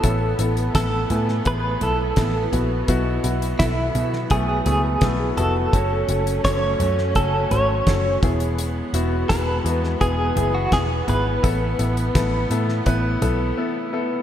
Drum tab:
HH |x-xxx-x-x-x-x-x-|x-xxx-x-x-x-x-x-|x-xxx-x-x-x-x-xx|x-x-x-x-x-x-x-x-|
SD |----o--o----o---|----o--o----o---|----o--o----o---|----o--o----o---|
FT |------o---o---o-|------o---o---o-|------o---o---o-|----------o---o-|
BD |o---o---o---o---|o---o---o---o---|o---o---o---o-o-|----o---o---o---|

HH |x-xxx-x-x-x-----|
SD |----o--o--------|
FT |----------o-----|
BD |o---o---o-------|